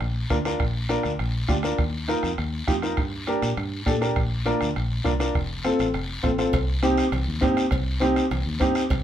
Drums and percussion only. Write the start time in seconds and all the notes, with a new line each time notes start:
0.01 bombo rim, high conga, long guiro
0.30 bombo low, bombo rim, high conga, short guiro
0.45 bombo rim, short guiro
0.60 bombo low, bombo rim, high conga, long guiro
0.89 bombo rim, high conga, short guiro
1.03 bombo rim, short guiro
1.19 bombo rim, high conga, long guiro
1.49 bombo low, bombo rim, high conga, short guiro
1.63 bombo rim, short guiro
1.78 bombo low, bombo rim, high conga, long guiro
2.09 bombo rim, high conga, short guiro
2.23 bombo rim, short guiro
2.38 bombo rim, high conga, long guiro
2.68 bombo low, bombo rim, high conga, short guiro
2.82 bombo rim, short guiro
2.97 bombo low, bombo rim, high conga, long guiro
3.27 bombo rim, high conga, short guiro
3.42 bombo rim, short guiro
3.57 bombo rim, long guiro
3.86 bombo low, bombo rim, high conga, short guiro
4.02 bombo rim, short guiro
4.16 bombo low, bombo rim, high conga, long guiro
4.46 bombo rim, high conga, short guiro
4.61 bombo rim, short guiro
4.76 bombo rim, high conga, long guiro
5.05 bombo low, bombo rim, high conga, short guiro
5.20 bombo rim, short guiro
5.35 bombo low, bombo rim, high conga, long guiro
5.64 bombo rim, high conga, short guiro
5.79 bombo rim, short guiro
5.94 bombo rim, high conga, long guiro
6.23 bombo low, bombo rim, high conga, short guiro
6.38 bombo rim, short guiro
6.53 bombo low, bombo rim, cowbell, high conga, long guiro
6.83 bombo rim, high conga, short guiro
6.98 bombo rim, short guiro
7.12 bombo rim, cowbell, high conga, low conga, long guiro
7.42 bombo low, bombo rim, high conga, low timbale, short guiro
7.57 bombo rim, short guiro
7.71 bombo low, bombo rim, cowbell, high conga, long guiro
8.01 bombo rim, high conga, short guiro
8.16 bombo rim, short guiro
8.31 bombo rim, cowbell, high conga, low conga, long guiro
8.61 bombo low, bombo rim, high conga, short guiro
8.75 bombo rim, short guiro
8.90 bombo low, bombo rim, cowbell, high conga, low conga, long guiro